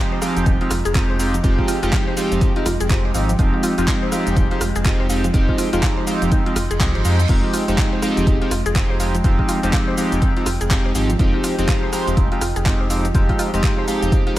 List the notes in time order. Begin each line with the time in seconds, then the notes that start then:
Already playing: F3 G#3 C4 D#4 F4 G4 D#5 A#5
0.12 C5
0.21 F3 G#3 C4 D#4 G4 F5, cross-stick, open hi-hat, cabasa
0.36 F1 F3, closed hi-hat, cabasa
0.46 D#1 D#4, kick, closed hi-hat, cabasa
0.61 F3 G#3 C4 D#4 F4 G4, closed hi-hat
0.71 F1 F4, cross-stick, open hi-hat, cabasa
0.85 F1 G#4, closed hi-hat, cabasa
0.94 F3 G#3 C4 D#4 F4 G4, kick, clap, closed hi-hat, cabasa
1.00 G5
1.10 C5
1.19 F3 G#3 C4 D#4 G4 F5, open hi-hat, cabasa
1.34 F3, closed hi-hat, cabasa
1.43 F1 F3 G#3 C4 D#4 F4 G4, kick, closed hi-hat, cabasa
1.58 F4, kick
1.68 F4, open hi-hat, cabasa
1.82 F1 F3 G#3 C4 D#4 F4 G4, closed hi-hat, cabasa
1.93 F5, kick, clap, closed hi-hat, cabasa
2.07 C5
2.16 F3 G#3 C4 D#4 G4 F5, open hi-hat, cabasa
2.32 F1 F3, closed hi-hat, cabasa
2.41 D#4, kick, closed hi-hat, cabasa
2.56 F3 G#3 C4 D#4 F4 G4, closed hi-hat
2.66 F1 F4, cross-stick, open hi-hat, cabasa
2.80 F1 G#4, closed hi-hat, cabasa
2.90 F3 G#3 C4 D#4 F4 G4, kick, clap, closed hi-hat, cabasa
3.05 C5
3.14 G#1 F3 G#3 C4 D#4 G4 F5, open hi-hat, cabasa
3.29 F3, closed hi-hat, cabasa
3.38 F1 F3 G#3 C4 D#4 F4 G4, kick, closed hi-hat, cabasa
3.54 F4
3.63 F4, open hi-hat, cabasa
3.77 F1 F3 G#3 C4 D#4 F4 G4, closed hi-hat, cabasa
3.88 F5, kick, clap, closed hi-hat, cabasa
4.03 C5
4.12 F3 G#3 C4 D#4 G4 F5, cross-stick, open hi-hat, cabasa
4.27 F1 F3, closed hi-hat, cabasa
4.36 D#1 D#4, kick, closed hi-hat, cabasa
4.51 F3 G#3 C4 D#4 F4 G4, closed hi-hat
4.61 F1 F4, cross-stick, open hi-hat, cabasa
4.76 F1 G#4, closed hi-hat, cabasa
4.85 F3 G#3 C4 D#4 F4 G4, kick, clap, closed hi-hat, cabasa
4.90 C6
5.00 C5
5.09 F3 G#3 C4 D#4 G4 F5, open hi-hat, cabasa
5.24 F3, closed hi-hat, cabasa
5.33 F1 F3 G#3 C4 D#4 F4 G4, kick, closed hi-hat, cabasa
5.49 F4, kick
5.58 F4, open hi-hat, cabasa
5.73 F1 F3 G#3 C4 D#4 F4 G4, closed hi-hat, cabasa
5.83 F5, kick, clap, closed hi-hat, cabasa
5.97 C5
6.07 F3 G#3 C4 D#4 G4 F5, open hi-hat, cabasa
6.22 F1 F3, closed hi-hat, cabasa
6.32 D#4, kick, closed hi-hat, reverse cymbal, cabasa
6.46 F3 G#3 C4 D#4 F4 G4, closed hi-hat
6.56 F1 F4, cross-stick, open hi-hat, cabasa
6.71 F1 G#4, closed hi-hat, cabasa
6.80 C2 F3 G#3 C4 D#4 F4 G4, kick, clap, closed hi-hat, cabasa
6.95 G#1 C5, closed hi-hat
7.04 F2 F3 G#3 C4 D#4 G4 F5, open hi-hat, cabasa
7.20 F3, closed hi-hat, cabasa
7.29 F1 F3 G#3 C4 D#4 F4 G4, kick, closed hi-hat, crash, cabasa
7.44 F4
7.54 F4, open hi-hat, cabasa
7.68 F1 F3 G#3 C4 D#4 G4, closed hi-hat, cabasa
7.78 F5, kick, clap, closed hi-hat, cabasa
7.93 C5
8.02 F3 G#3 C4 D#4 G4 F5, cross-stick, open hi-hat, cabasa
8.17 F1 F3, closed hi-hat, cabasa
8.27 D#1 D#4, kick, closed hi-hat, cabasa
8.41 F3 G#3 C4 D#4 F4 G4, closed hi-hat
8.51 F1 F4, cross-stick, open hi-hat, cabasa
8.66 F1 G#4, closed hi-hat, cabasa
8.75 F3 G#3 C4 D#4 F4 G4, kick, clap, closed hi-hat, cabasa
8.81 G5
8.90 C5
9.00 F3 G#3 C4 D#4 G4 F5, open hi-hat, cabasa
9.15 F3, closed hi-hat, cabasa
9.24 F1 F3 G#3 C4 D#4 F4 G4, kick, closed hi-hat, cabasa
9.39 F4, kick
9.49 F4, open hi-hat, cabasa
9.63 F1 F3 G#3 C4 D#4 G4, closed hi-hat, cabasa
9.73 F5, kick, clap, closed hi-hat, cabasa
9.88 C5
9.97 F3 G#3 C4 D#4 G4 F5, open hi-hat, cabasa
10.12 F1 F3, closed hi-hat, cabasa
10.22 D#4, kick, closed hi-hat, cabasa
10.36 F3 G#3 C4 D#4 F4 G4, closed hi-hat
10.46 F1 F4, cross-stick, open hi-hat, cabasa
10.61 F1 G#4, closed hi-hat, cabasa
10.70 F3 G#3 C4 D#4 F4 G4, kick, clap, closed hi-hat, cabasa
10.85 C5
10.95 G#1 F3 G#3 C4 D#4 G4 F5, open hi-hat, cabasa
11.10 F3, closed hi-hat, cabasa
11.19 F1 F3 G#3 C4 D#4 F4 G4, kick, closed hi-hat, cabasa
11.34 F4
11.44 F4, open hi-hat, cabasa
11.58 F1 F3 G#3 C4 D#4 G4, closed hi-hat, cabasa
11.68 F5, kick, clap, closed hi-hat, cabasa
11.83 C5
11.92 F3 G#3 C4 D#4 G4 F5, cross-stick, open hi-hat, cabasa
12.07 F1 F3, closed hi-hat, cabasa
12.17 D#1 D#4, kick, closed hi-hat, cabasa
12.31 F3 G#3 C4 D#4 F4 G4, closed hi-hat
12.41 F1 F4, cross-stick, open hi-hat, cabasa
12.56 F1 G#4, closed hi-hat, cabasa
12.65 F3 G#3 C4 D#4 F4 G4, kick, clap, closed hi-hat, cabasa
12.71 A#5
12.81 C5
12.90 F3 G#3 C4 D#4 G4 F5, open hi-hat, cabasa
13.05 F3, closed hi-hat, cabasa
13.14 F1 F3 G#3 C4 D#4 F4 G4, kick, closed hi-hat, cabasa
13.29 F4, kick, closed hi-hat
13.39 F4, open hi-hat, cabasa
13.53 F1 F3 G#3 C4 D#4 G4, closed hi-hat, cabasa
13.63 F5, kick, clap, closed hi-hat, cabasa
13.78 C5
13.87 F3 G#3 C4 D#4 G4 F5, open hi-hat, cabasa
14.02 F1 F3, closed hi-hat, cabasa
14.12 D#4, kick, closed hi-hat, cabasa
14.26 F3 G#3 C4 D#4 F4 G4, closed hi-hat